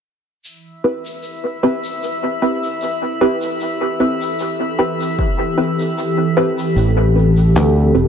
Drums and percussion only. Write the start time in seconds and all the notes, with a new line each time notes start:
0.45 shaker
1.05 shaker
1.23 shaker
1.84 shaker
2.03 shaker
2.64 shaker
2.81 shaker
3.42 shaker
3.60 shaker
4.21 shaker
4.39 shaker
5.01 shaker
5.19 kick, shaker
5.80 shaker
5.97 shaker
6.59 shaker
6.77 shaker
7.37 shaker
7.56 shaker